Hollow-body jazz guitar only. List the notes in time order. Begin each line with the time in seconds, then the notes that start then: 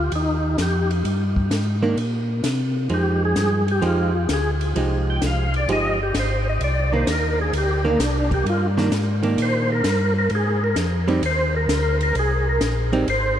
1.82 D#3 A#3 D4
2.90 F3 G#3 D#4
3.82 F3 G#3 D#4 G4
4.76 F3 G#3 D#4 G4
5.69 F3 G#3 D#4 G4
6.93 D#3 A#3 D4
7.85 D#3 A#3 D4
8.78 D#3 A#3 D4
9.23 D#3 A#3 D4
11.08 G3 C4 D#4
12.93 G3 C4 D#4